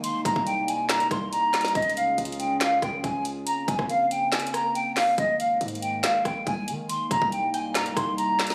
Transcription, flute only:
X:1
M:4/4
L:1/8
Q:1/4=140
K:Cphr
V:1 name="Flute"
c' b g a b c' b2 | e f z g f g a z | b a f g a b g f | e f z g f g a z |
c' b g a b c' b2 |]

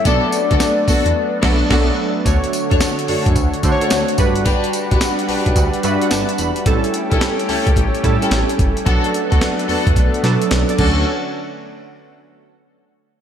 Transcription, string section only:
X:1
M:4/4
L:1/16
Q:"Swing 16ths" 1/4=109
K:D
V:1 name="String section"
[B,DFA] z2 [B,DFA] z2 [B,DFA] z3 [B,DFA]2 [B,DFA]2 z2 | z3 [DFAc] z2 [DFAc] z4 [DFAc] z4 | [DFGB] z2 [DFGB] z2 [DFGB] z8 z | z3 [CEGA] z2 [CEGA] z4 [CEGA] z4 |
[B,DFA] z2 [B,DFA] z2 [B,DFA] z6 z [CDFA]2 | z16 |]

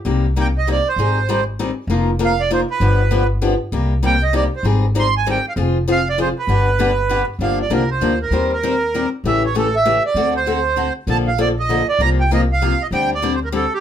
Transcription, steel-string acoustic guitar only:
X:1
M:3/4
L:1/8
Q:"Swing" 1/4=196
K:Cm
V:1 name="Steel-string acoustic guitar"
[C,G,B,EG] z [C,G,B,EG] z [C,G,B,EG] z | [E,G,CEA] z [E,G,CEA] z [E,G,CEA] z | [F,B,EFB] z [F,B,EFB] z [F,B,EFB] z | [D,F,=B,DG] z [D,F,B,DG] z [D,F,B,DG] z |
[C,G,B,EG] z [C,G,B,EG] z [C,G,B,EG] z | [E,G,CEA] z [E,G,CEA] z [E,G,CEA] z | [F,CFA] z [F,CFA] z [F,CFA] z | [D,G,=B,DG] z [D,G,B,DG] z [D,G,B,DG] z |
[K:Gm] [D,F,B,DG] z [D,F,B,DG] z [D,F,B,DG] z | [E,G,CGc] z [E,G,CGc] z [E,G,CGc] z | [^C,=E,A,^CG] z [C,E,A,CG] z [C,E,A,CG] z | [D,A,C^FA] z [D,A,CFA] z [D,A,CFA] z |
[D,F,B,DA] z [D,F,B,DA] z [D,F,B,DA] z | [C,F,B,FG] z [C,F,B,FG] z [C,F,B,FG] z | [D,G,CDG] z [D,G,CDG] z [D,G,CDG] z |]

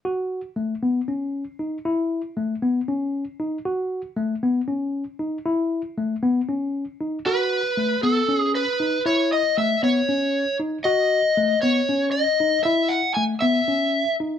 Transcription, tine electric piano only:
X:1
M:7/8
L:1/8
Q:1/4=117
K:Bmix
V:1 name="Tine electric piano"
F2 A, B, C2 D | E2 A, B, C2 D | F2 A, B, C2 D | E2 A, B, C2 D |
F2 A, B, C2 D | E2 A, B, C2 D | F2 A, B, C2 D | E2 A, B, C2 D |]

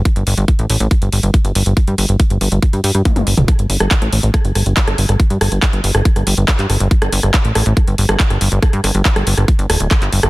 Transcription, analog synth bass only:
X:1
M:4/4
L:1/16
Q:1/4=140
K:Cdor
V:1 name="Analog synth bass" clef=bass
z G,,, G,,, G,,, z A,,, A,,, A,,, z G,,, G,,, G,,, z G,,, G,,, G,,, | z G,, G,,, G,,, z G,,, G,,, G,,, z G,, G,, G,, z G,,, G,,, D,,, | z G,,, G,,, G,,, z A,,, A,,, A,,, z G,,, G,,, G,,, z G,,, G,,, G,,, | z G,, G,,, G,,, z G,,, G,,, G,,, z G,,, G,,, G,,, z G,, G,,, G,,, |
z G,,, G,,, G,,, z A,,, A,,, A,,, z G,,, G,,, G,,, z G,,, G,,, G,,, | z G,, G,,, G,,, z G,,, G,,, G,,, z G,,, D,,, D,,, z G,,, G,,, G,,, |]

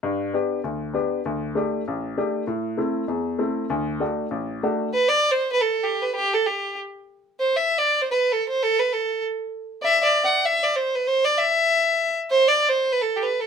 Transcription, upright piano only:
X:1
M:4/4
L:1/8
Q:"Swing" 1/4=196
K:G
V:1 name="Upright piano"
G,,2 [B,DG]2 D,,2 [B,DG]2 | D,,2 [A,DG]2 A,,,2 [A,DG]2 | A,,2 [A,CE]2 E,,2 [A,CE]2 | D,,2 [A,DF]2 A,,,2 [A,DF]2 |
z8 | z8 | z8 | z8 |
z8 | z8 | z8 |]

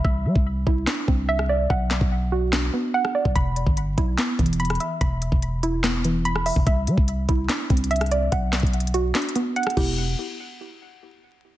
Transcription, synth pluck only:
X:1
M:4/4
L:1/8
Q:1/4=145
K:Clyd
V:1 name="Synth pluck"
e3 E D C e d | f3 F D B, f d | b3 E B, E, b e | b3 E B, E, b e |
e3 E D C e d | f3 F D B, f [B,EG] | z8 |]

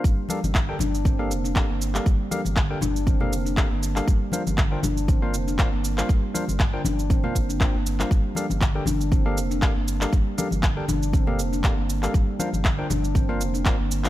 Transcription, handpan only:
X:1
M:4/4
L:1/16
Q:"Swing 16ths" 1/4=119
K:Gm
V:1 name="Handpan"
G, z G, z D, z D z C B, z D z B, z G, | G, z G, z D, z D z C B, z D z B, z G, | G, z G, z D, z D z C B, z D z B, z G, | G, z G, z D, z D z C B, z D z B, z G, |
G, z G, z D, z D z C B, z D z B, z G, | G, z G, z D, z D z C B, z D z B, z G, | G, z G, z D, z D z C B, z D z B, z G, |]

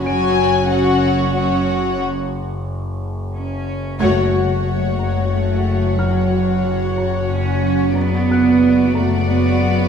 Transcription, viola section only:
X:1
M:3/4
L:1/8
Q:1/4=91
K:F#m
V:1 name="Viola section"
[F,C]2 [F,C]2 [F,C]2 | z6 | F6- | F6 |
F6 |]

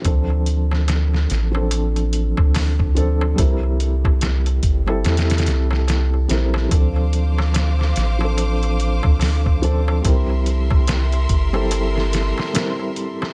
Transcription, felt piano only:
X:1
M:4/4
L:1/16
Q:"Swing 16ths" 1/4=72
K:Dm
V:1 name="Felt piano"
[F,CDA]6- [F,CDA] [F,CDA]6- [F,CDA] [F,CDA]2 | [G,CEB]6- [G,CEB] [G,CEA] z6 [G,CEB] z | [F,CDA]6- [F,CDA] [F,CDA]6- [F,CDA] [F,CDA]2 | [G,CEB]6- [G,CEB] [G,CEA] z4 [G,CEB]4 |]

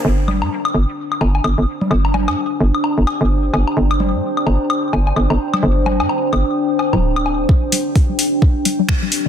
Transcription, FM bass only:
X:1
M:4/4
L:1/16
Q:"Swing 16ths" 1/4=129
K:Cm
V:1 name="FM bass" clef=bass
G,,,3 G,, z2 G,,, z3 G,,,2 G,,, G,,, z2 | G,,,3 G,, z2 G,,, z2 G,,, z G,,,3 G,,, z | G,,,3 G,, z2 G,,, z3 G,,,2 G,,, G,,, z2 | G,,,3 G,, z2 G,,, z4 D,,,4- D,,, |
z16 |]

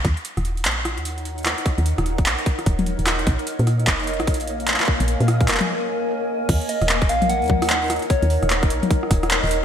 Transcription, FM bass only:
X:1
M:4/4
L:1/16
Q:"Swing 16ths" 1/4=149
K:Ebdor
V:1 name="FM bass" clef=bass
E,, z2 E,,,3 B,,,3 E,,6 z | z E,,2 E,,,3 B,,, z3 E,,,3 E,,,3 | B,,, z2 B,,3 F,,,3 B,,,6 z | z B,,,2 B,,3 F,,, z8 z |
E,, z2 E,,,3 B,,,3 E,,6 z | z E,,2 E,,,3 B,,, z3 E,,,3 E,,,3 |]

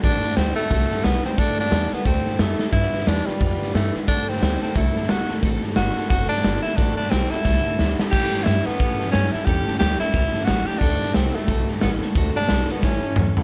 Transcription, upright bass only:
X:1
M:4/4
L:1/8
Q:"Swing" 1/4=178
K:Dmix
V:1 name="Upright bass" clef=bass
A,,, z D,, z C,, z B,,, z | A,,, z E,, z D,, z F,, z | G,, z E,, z =F,, z G,, z | z2 D,, z C,, z B,,, z |
A,,, z G,,, z F,,, z G,,, z | A,,, z B,,, z C,, z D,, z | A,, z G,, z A,, z G,, z | E,, z D,, z ^C,, z A,,, z |
D,, z C,, z B,,, z A,,, z | D,, z B,,, z A,,, z E,, z |]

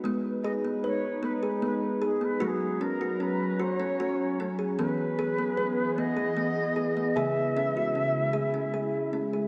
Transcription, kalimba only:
X:1
M:6/8
L:1/16
Q:3/8=51
K:G#m
V:1 name="Kalimba"
B,2 G B, B2 B, G B,2 G B, | F2 C F C2 F C F2 C G | B,2 G B, B2 B, G B,2 G B, | G2 C F C2 G C G2 C G |]
V:2 name="Kalimba" clef=bass
G,12 | F,12 | E,12 | C,12 |]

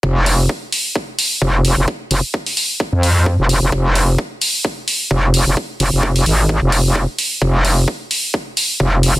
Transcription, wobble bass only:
X:1
M:4/4
L:1/16
Q:"Swing 16ths" 1/4=130
K:Fm
V:1 name="Wobble bass" clef=bass
F,,,4 z8 F,,,3 F,,, | z2 F,,, z6 F,,4 F,,,2 F,,, | F,,,4 z8 F,,,3 F,,, | z2 F,,, F,,,3 A,,,3 F,,,4 z3 |
F,,,4 z8 F,,,3 F,,, |]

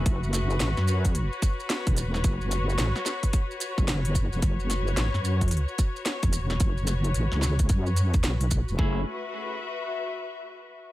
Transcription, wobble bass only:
X:1
M:4/4
L:1/16
Q:"Swing 16ths" 1/4=110
K:F#m
V:1 name="Wobble bass" clef=bass
F,,,4 A,,, F,,4 z4 E,,,3 | F,,,4 A,,, z6 F,,,4 E,,, | F,,,4 A,,, F,,4 z4 E,,,3 | F,,,4 A,,, C,,3 F,,4 B,,,3 E,,, |
F,,,2 z12 z2 |]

